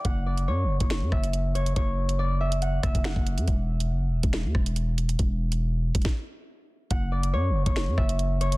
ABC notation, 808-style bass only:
X:1
M:4/4
L:1/16
Q:1/4=140
K:Edor
V:1 name="808-style bass" clef=bass
F,,,4 F,,3/2 F,,,3/2 F,,,2 F,, F,,,6 | F,,,8- F,,,2 F,,, F,,,2 F,,,2 F,, | E,,,4 F,,,3/2 E,,,3/2 E,,,2 E,, E,,,6 | E,,,6- E,,, E,,, z8 |
F,,,4 F,,3/2 F,,,3/2 F,,,2 F,, F,,,6 |]